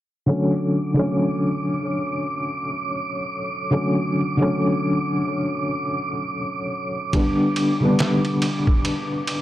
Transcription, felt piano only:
0, 0, Header, 1, 2, 480
1, 0, Start_track
1, 0, Tempo, 857143
1, 153, Time_signature, 4, 2, 24, 8
1, 5274, End_track
2, 0, Start_track
2, 0, Title_t, "Felt piano"
2, 0, Program_c, 0, 0
2, 147, Note_on_c, 0, 50, 70
2, 154, Note_on_c, 0, 54, 62
2, 158, Note_on_c, 0, 57, 60
2, 162, Note_on_c, 0, 61, 75
2, 274, Control_c, 0, 64, 127
2, 498, Note_off_c, 0, 50, 0
2, 502, Note_off_c, 0, 54, 0
2, 504, Note_off_c, 0, 57, 0
2, 506, Note_off_c, 0, 61, 0
2, 527, Note_on_c, 0, 50, 77
2, 535, Note_on_c, 0, 54, 70
2, 544, Note_on_c, 0, 57, 68
2, 554, Note_on_c, 0, 61, 90
2, 2045, Note_off_c, 0, 50, 0
2, 2049, Note_off_c, 0, 54, 0
2, 2054, Note_off_c, 0, 57, 0
2, 2059, Note_off_c, 0, 61, 0
2, 2075, Note_on_c, 0, 50, 64
2, 2078, Note_on_c, 0, 54, 65
2, 2084, Note_on_c, 0, 57, 62
2, 2088, Note_on_c, 0, 61, 79
2, 2423, Note_off_c, 0, 50, 0
2, 2424, Note_off_c, 0, 54, 0
2, 2427, Note_off_c, 0, 57, 0
2, 2429, Note_off_c, 0, 61, 0
2, 2448, Note_on_c, 0, 50, 82
2, 2457, Note_on_c, 0, 54, 77
2, 2466, Note_on_c, 0, 57, 74
2, 2475, Note_on_c, 0, 61, 90
2, 3966, Note_off_c, 0, 50, 0
2, 3970, Note_off_c, 0, 54, 0
2, 3975, Note_off_c, 0, 57, 0
2, 3979, Note_off_c, 0, 61, 0
2, 3992, Note_on_c, 0, 50, 70
2, 3994, Note_on_c, 0, 55, 67
2, 4000, Control_c, 0, 64, 0
2, 4002, Note_on_c, 0, 59, 70
2, 4003, Note_on_c, 0, 62, 84
2, 4093, Control_c, 0, 64, 127
2, 4341, Note_off_c, 0, 50, 0
2, 4342, Note_off_c, 0, 55, 0
2, 4346, Note_off_c, 0, 59, 0
2, 4347, Note_off_c, 0, 62, 0
2, 4370, Note_on_c, 0, 50, 84
2, 4379, Note_on_c, 0, 55, 81
2, 4387, Note_on_c, 0, 59, 76
2, 4397, Note_on_c, 0, 62, 91
2, 5274, Note_off_c, 0, 50, 0
2, 5274, Note_off_c, 0, 55, 0
2, 5274, Note_off_c, 0, 59, 0
2, 5274, Note_off_c, 0, 62, 0
2, 5274, End_track
0, 0, End_of_file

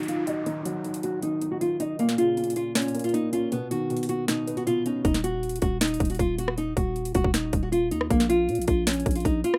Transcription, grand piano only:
0, 0, Header, 1, 2, 480
1, 0, Start_track
1, 0, Key_signature, -6, "minor"
1, 0, Tempo, 382166
1, 580, Time_signature, 4, 2, 24, 8
1, 12036, End_track
2, 0, Start_track
2, 0, Title_t, "Grand piano"
2, 0, Program_c, 0, 0
2, 0, Control_c, 0, 64, 127
2, 0, Note_on_c, 0, 51, 89
2, 0, Note_on_c, 0, 54, 84
2, 0, Note_on_c, 0, 63, 87
2, 100, Note_off_c, 0, 51, 0
2, 100, Note_on_c, 0, 51, 74
2, 341, Note_on_c, 0, 75, 89
2, 563, Note_off_c, 0, 51, 0
2, 582, Note_on_c, 0, 51, 92
2, 821, Note_off_c, 0, 54, 0
2, 821, Note_on_c, 0, 54, 76
2, 1043, Note_off_c, 0, 51, 0
2, 1061, Note_off_c, 0, 63, 0
2, 1062, Note_on_c, 0, 51, 77
2, 1522, Note_off_c, 0, 51, 0
2, 1540, Note_off_c, 0, 75, 0
2, 1540, Note_on_c, 0, 51, 85
2, 1779, Note_on_c, 0, 63, 81
2, 2003, Note_off_c, 0, 51, 0
2, 2020, Note_off_c, 0, 54, 0
2, 2022, Note_on_c, 0, 51, 85
2, 2259, Note_on_c, 0, 75, 82
2, 2499, Note_off_c, 0, 75, 0
2, 2500, Note_off_c, 0, 63, 0
2, 2501, Note_off_c, 0, 51, 0
2, 2503, Note_on_c, 0, 46, 86
2, 2514, Control_c, 0, 64, 0
2, 2712, Control_c, 0, 64, 127
2, 2739, Note_on_c, 0, 49, 77
2, 2961, Note_off_c, 0, 46, 0
2, 2980, Note_on_c, 0, 46, 82
2, 3443, Note_off_c, 0, 46, 0
2, 3462, Note_on_c, 0, 46, 87
2, 3701, Note_on_c, 0, 58, 86
2, 3921, Note_off_c, 0, 46, 0
2, 3940, Note_off_c, 0, 49, 0
2, 3940, Note_on_c, 0, 46, 78
2, 4181, Note_on_c, 0, 61, 85
2, 4420, Note_off_c, 0, 46, 0
2, 4420, Note_off_c, 0, 58, 0
2, 4420, Note_off_c, 0, 61, 0
2, 4420, Note_on_c, 0, 47, 92
2, 4436, Control_c, 0, 64, 0
2, 4661, Note_on_c, 0, 51, 85
2, 4666, Control_c, 0, 64, 127
2, 4880, Note_off_c, 0, 47, 0
2, 4899, Note_on_c, 0, 47, 82
2, 5360, Note_off_c, 0, 47, 0
2, 5379, Note_on_c, 0, 47, 88
2, 5620, Note_on_c, 0, 59, 86
2, 5843, Note_off_c, 0, 47, 0
2, 5860, Note_off_c, 0, 51, 0
2, 5861, Note_on_c, 0, 47, 75
2, 6100, Note_on_c, 0, 61, 90
2, 6340, Note_off_c, 0, 59, 0
2, 6340, Note_off_c, 0, 61, 0
2, 6341, Note_off_c, 0, 47, 0
2, 6354, Control_c, 0, 64, 0
2, 6589, Control_c, 0, 64, 127
2, 10197, Control_c, 0, 64, 0
2, 12036, End_track
0, 0, End_of_file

